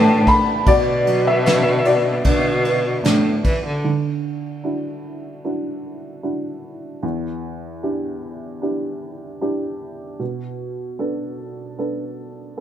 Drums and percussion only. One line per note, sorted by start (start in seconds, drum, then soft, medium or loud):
0.27 kick medium
0.27 ride soft
0.66 kick medium
0.66 ride medium
1.07 ride soft
1.46 snare medium
1.46 ride medium
1.85 ride soft
2.24 kick medium
2.24 ride medium
2.65 ride soft
3.04 snare medium
3.04 ride medium
3.44 kick medium
3.44 ride soft